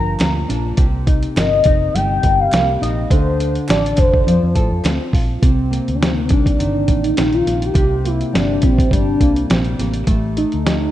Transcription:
Already playing: fingered electric bass G1, nylon-string guitar G2 F3 A#3 D4 A#4, soft synth lead A#5
0.19 fingered electric bass D2, nylon-string guitar A#3, snare, clap, closed hi-hat
0.49 fingered electric bass A#1, nylon-string guitar D4, snare, closed hi-hat
0.77 fingered electric bass C2, nylon-string guitar C3, kick, closed hi-hat
1.06 nylon-string guitar D#4, kick, closed hi-hat
1.23 closed hi-hat
1.36 fingered electric bass G1, nylon-string guitar A#4, soft synth lead D#5, snare, clap, closed hi-hat
1.64 fingered electric bass F1, nylon-string guitar D#4, kick, closed hi-hat
1.94 fingered electric bass G1, nylon-string guitar G3, soft synth lead G5, closed hi-hat
2.23 fingered electric bass G1, nylon-string guitar A#4, kick, closed hi-hat
2.40 soft synth lead F5
2.52 fingered electric bass C2, nylon-string guitar A#3, snare, clap, closed hi-hat
2.81 fingered electric bass A#1, nylon-string guitar D#4, soft synth lead D#5, snare, closed hi-hat
3.10 fingered electric bass D2, nylon-string guitar D3, soft synth lead C5, kick, closed hi-hat
3.40 nylon-string guitar D4, closed hi-hat
3.55 closed hi-hat
3.68 fingered electric bass A1, nylon-string guitar A4, soft synth lead D5, snare, clap, closed hi-hat
3.86 closed hi-hat
3.97 fingered electric bass F1, nylon-string guitar D4, soft synth lead C5, kick, clap, closed hi-hat
4.14 kick
4.27 fingered electric bass F2, nylon-string guitar F3, closed hi-hat
4.43 fingered electric bass F2
4.55 fingered electric bass A2, nylon-string guitar A4, kick, closed hi-hat
4.72 fingered electric bass F2
4.84 fingered electric bass D2, nylon-string guitar C4, snare, clap, closed hi-hat
5.13 fingered electric bass A#1, nylon-string guitar F4, kick, open hi-hat
5.42 fingered electric bass C2, nylon-string guitar C3, soft synth lead C4, kick, closed hi-hat
5.71 nylon-string guitar A#3, closed hi-hat
5.88 fingered electric bass D2, closed hi-hat
5.95 soft synth lead D4
6.01 nylon-string guitar D#3, soft synth lead C4, snare, closed hi-hat
6.14 soft synth lead A#3
6.24 soft synth lead C4
6.29 fingered electric bass C2, nylon-string guitar D4, soft synth lead D4, kick, closed hi-hat
6.46 kick, closed hi-hat
6.58 fingered electric bass G1, nylon-string guitar D#3, soft synth lead D4, closed hi-hat
6.88 fingered electric bass A1, nylon-string guitar A#3, kick, closed hi-hat
7.03 soft synth lead D#4, closed hi-hat
7.17 fingered electric bass A#1, nylon-string guitar D#3, snare, closed hi-hat
7.33 soft synth lead F4, closed hi-hat
7.46 fingered electric bass A#1, nylon-string guitar A#3, snare, closed hi-hat
7.62 soft synth lead G4, closed hi-hat
7.74 fingered electric bass C2, nylon-string guitar C3, kick, closed hi-hat
8.04 nylon-string guitar A#3, soft synth lead E4, closed hi-hat
8.21 closed hi-hat
8.33 fingered electric bass G1, nylon-string guitar G3, soft synth lead D4, snare, closed hi-hat
8.62 fingered electric bass A#1, soft synth lead C4, nylon-string guitar E4, kick, closed hi-hat
8.78 kick, closed hi-hat
8.91 fingered electric bass G1, nylon-string guitar G3, soft synth lead D4, kick, closed hi-hat
9.20 fingered electric bass C2, nylon-string guitar A#3, kick, closed hi-hat
9.36 closed hi-hat
9.50 fingered electric bass A#1, nylon-string guitar G3, soft synth lead C4, snare, closed hi-hat
9.65 closed hi-hat
9.79 fingered electric bass A1, nylon-string guitar A#3, snare, closed hi-hat
9.94 closed hi-hat
10.07 fingered electric bass A1, nylon-string guitar A3, kick, closed hi-hat
10.37 soft synth lead D#4, nylon-string guitar A4, closed hi-hat
10.52 fingered electric bass D2, closed hi-hat
10.65 soft synth lead D#4, nylon-string guitar G4, snare, closed hi-hat

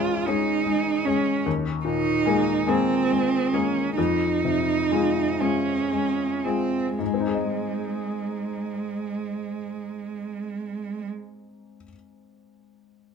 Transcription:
Already playing: upright piano C#2 G#2 G#3 C#4 G#4, cello F4
0.26 upright piano G#3 C#4 G#4, cello D#4
0.66 upright piano G#3
1.05 upright piano G#3 C#4 G#4, cello C#4
1.46 upright piano D#2
1.85 upright piano A#2, cello D#4
2.26 upright piano G#3 A#3 G#4
2.67 upright piano G#3 A#3 G#4, cello C4
3.11 upright piano G#3
3.53 upright piano G#3 A#3 G#4, cello C#4
3.97 upright piano F2, cello D#4
4.45 upright piano C3
4.91 upright piano G#3 F4 G#4
5.40 upright piano G#3 F4 G#4, cello C#4
5.91 upright piano G#3
6.45 upright piano G#3 F4 G#4, cello C4
6.99 upright piano G#2, cello G#3
7.06 upright piano G#3
7.14 upright piano C4
7.20 upright piano D#4
7.27 upright piano G#4
7.34 upright piano D#5

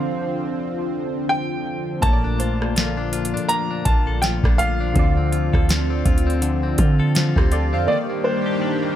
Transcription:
Already playing: synth keys D3 D4 F4 C5, analog synth pad D3 F3 C4 F4, grand piano F5
1.29 grand piano G5
2.01 808-style bass A#1, synth keys A#2 A3 A#3, analog synth pad A#2 D3, clean electric guitar A#3, grand piano A5, kick, closed hi-hat
2.06 synth keys C#5
2.13 synth keys D5
2.24 clean electric guitar D4
2.39 clean electric guitar F4, synth pluck C5, closed hi-hat
2.62 cross-stick
2.76 clean electric guitar F4, snare, closed hi-hat
2.97 clean electric guitar D4
3.13 clean electric guitar F4, closed hi-hat
3.25 closed hi-hat
3.34 808-style bass A#2, clean electric guitar D4, closed hi-hat
3.49 clean electric guitar A#3, grand piano A#5, closed hi-hat
3.71 clean electric guitar D4
3.85 808-style bass A#1, clean electric guitar F4, grand piano A5, kick, closed hi-hat
4.07 clean electric guitar A4
4.22 clean electric guitar F4, grand piano G5, snare, closed hi-hat
4.44 808-style bass A#1, clean electric guitar D4, kick, cross-stick
4.58 clean electric guitar F4, grand piano F5, closed hi-hat
4.80 clean electric guitar D4
4.94 808-style bass D2, synth keys D3 C4 F4, clean electric guitar D3, analog synth pad C4, kick, closed hi-hat
4.99 synth keys D5
5.17 clean electric guitar C4
5.32 clean electric guitar F4, closed hi-hat
5.53 808-style bass D2, clean electric guitar A4, kick, cross-stick
5.69 clean electric guitar F4, snare, closed hi-hat
5.90 clean electric guitar C4
6.05 808-style bass D2, clean electric guitar F4, kick, closed hi-hat
6.18 closed hi-hat
6.27 clean electric guitar C4, closed hi-hat
6.42 clean electric guitar D3, closed hi-hat
6.63 clean electric guitar C4
6.78 808-style bass D3, clean electric guitar F4, kick, closed hi-hat
7.00 clean electric guitar A4
7.15 clean electric guitar F4, snare, closed hi-hat
7.36 808-style bass D2, clean electric guitar C4, synth keys G4 C5, kick, cross-stick
7.52 clean electric guitar F4, synth keys A4 D5, closed hi-hat
7.73 808-style bass F2, clean electric guitar C4, synth keys C5 F5
7.86 synth keys D#3 A#3 G4, clean electric guitar D#3, analog synth pad D#3 G3 A#3 D4 G4, grand piano D5
7.92 synth keys D5
8.09 clean electric guitar A#3
8.24 clean electric guitar D4, grand piano C5
8.46 clean electric guitar G4
8.61 clean electric guitar D4
8.83 clean electric guitar A#3

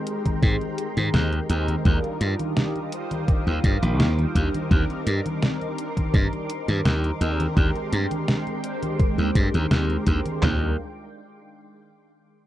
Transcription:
Already playing: analog polysynth G#3 C4 D#4 G4 A#4, string machine G#3 G5 A#5 C6
0.05 analog polysynth G#3 C4 D#4 G4 A#4, closed hi-hat
0.26 kick, closed hi-hat, high conga
0.42 slap bass G#2, kick, closed hi-hat, high conga
0.61 closed hi-hat, high conga
0.78 closed hi-hat
0.97 slap bass G#2, closed hi-hat, high conga
1.14 slap bass D#2, snare, closed hi-hat, high conga
1.33 closed hi-hat, high conga
1.49 slap bass D#2, analog polysynth G#3 C4 D#4 G4 A#4, closed hi-hat
1.68 closed hi-hat, high conga
1.84 slap bass D#2, analog polysynth G3 D4 D#4 F4 A#4, string machine G4 F5 D6 D#6, kick, closed hi-hat, high conga
2.04 closed hi-hat, high conga
2.21 slap bass G2, closed hi-hat
2.39 closed hi-hat, high conga
2.57 snare, closed hi-hat, high conga
2.76 closed hi-hat, high conga
2.92 analog polysynth G3 D4 D#4 F4 C5, closed hi-hat
3.11 closed hi-hat, high conga
3.28 kick, closed hi-hat, high conga
3.47 slap bass D#2, closed hi-hat, high conga
3.64 slap bass G2, kick, closed hi-hat
3.82 slap bass A#1, closed hi-hat, high conga
3.99 slap bass D#2, snare, closed hi-hat, high conga
4.19 closed hi-hat, high conga
4.35 slap bass D#2, analog polysynth G3 D4 D#4 F4 A#4, kick, closed hi-hat
4.54 closed hi-hat, high conga
4.70 slap bass D#2, analog polysynth G3 C4 D4 D#4 A#4, string machine A#4 C6, kick, closed hi-hat, high conga
4.90 closed hi-hat, high conga
5.07 slap bass G2, closed hi-hat
5.26 closed hi-hat, high conga
5.43 snare, closed hi-hat, high conga
5.61 closed hi-hat, high conga
5.77 analog polysynth G3 C4 D4 D#4 A#4, closed hi-hat
5.97 kick, closed hi-hat, high conga
6.14 slap bass G2, kick, closed hi-hat, high conga
6.33 closed hi-hat, high conga
6.50 closed hi-hat
6.68 slap bass G2, closed hi-hat, high conga
6.85 slap bass D#2, snare, closed hi-hat, high conga
7.04 closed hi-hat, high conga
7.20 slap bass D#2, analog polysynth G#3 C4 D4 G4 A#4, string machine G#3 G5, closed hi-hat
7.40 closed hi-hat, high conga
7.55 slap bass D#2, analog polysynth G#3 C4 D4 G4 A#4, kick, closed hi-hat, high conga
7.76 closed hi-hat, high conga
7.93 slap bass G2, closed hi-hat
8.11 closed hi-hat, high conga
8.28 snare, closed hi-hat, high conga
8.47 closed hi-hat, high conga
8.63 analog polysynth G#3 C4 D4 G4 C5, closed hi-hat
8.83 closed hi-hat, high conga
9.00 kick, closed hi-hat, high conga
9.18 slap bass D#2, closed hi-hat, high conga
9.35 slap bass G2, kick, closed hi-hat
9.54 slap bass D#2, closed hi-hat, high conga
9.71 slap bass D#2, snare, closed hi-hat, high conga
9.90 closed hi-hat, high conga
10.06 slap bass D#2, analog polysynth G#3 C4 D4 G4 A#4, kick, closed hi-hat
10.26 closed hi-hat, high conga
10.40 slap bass D#2, analog polysynth G3 D4 D#4 F4, snare, clap, floor tom
10.45 analog polysynth A#4

